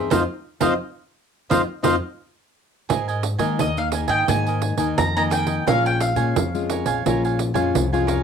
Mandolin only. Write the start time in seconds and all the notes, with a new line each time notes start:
3.60 D#5
3.78 F5
4.09 G5
4.29 G#5
4.98 A#5
5.17 A#5
5.32 G5
5.68 F5
5.86 G5
6.01 F5